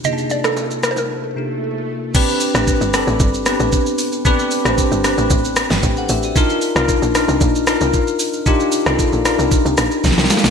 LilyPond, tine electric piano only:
\new Staff \with { instrumentName = "Tine electric piano" } { \time 4/4 \key c \lydian \tempo 4 = 114 << { r1 | r1 | r2 r8. <b' g''>8 <a' fis''>16 <g' e''>16 <fis' d''>16~ | <fis' d''>16 r2. r8. |
r2. r16 <bes' g''>16 <a' f''>16 <g' ees''>16 | } \\ { <c bes d' ees' f' gis' a''>2~ <c bes d' ees' f' gis' a''>8 <c bes d' ees' f' g'>4. | <c' d' g' b'>8 r16 <c' d' g' b'>8 r16 <c' d' g' a'>8. r16 <b c' d' g' b'>4~ <b c' d' g' b'>16 r16 | <c' d' g' b'>8 r16 <c' d' g' c''>8 r16 <c' d' g' b'>8. r4. r16 | <d' ees' f' bes'>8 r16 <d' ees' f' bes'>8 r16 <d' ees' f' bes'>8. r16 <d' ees' f' bes'>4~ <d' ees' f' bes'>16 r16 |
<d' ees' f' g'>8 r16 <d' ees' f' a'>8 r16 <d' ees' f' bes'>8. r4. r16 | } >> }